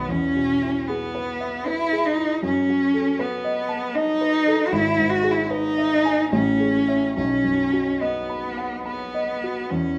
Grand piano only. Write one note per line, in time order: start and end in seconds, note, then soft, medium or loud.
0.00 0.11 B0 soft
0.00 0.11 B1 soft
0.00 0.11 D#3 soft
0.00 0.11 F#3 soft
0.00 0.11 B3 soft
0.08 2.39 E2 soft
0.36 0.78 B2 soft
0.63 1.04 E4 soft
0.89 1.30 G#4 soft
1.15 1.56 B4 soft
1.40 1.82 E5 soft
1.67 2.07 B4 soft
1.93 2.33 G#4 soft
2.17 2.43 E4 soft
2.43 4.68 F#2 medium
2.69 3.09 F#3 soft
2.94 3.34 A4 soft
3.19 3.59 B4 soft
3.44 3.85 D#5 soft
3.69 4.10 A5 soft
3.95 4.36 D#5 soft
4.21 4.62 B4 soft
4.47 4.72 A4 soft
4.72 6.28 G#1 medium
4.98 5.40 G#2 soft
5.24 5.66 G#4 soft
5.51 5.93 B4 soft
5.78 6.21 E5 soft
6.05 6.32 G#5 soft
6.32 7.14 A1 medium
6.60 7.05 G#4 soft
6.88 7.13 C#5 soft
6.88 7.13 E5 soft
7.17 9.66 B1 soft
7.44 7.89 F#2 soft
7.73 8.18 F#4 soft
8.01 8.46 D#5 soft
8.30 8.74 B5 soft
8.57 9.03 F#5 soft
8.86 9.31 B5 soft
9.14 9.59 D#5 soft
9.44 9.71 F#4 soft
9.71 9.98 E2 soft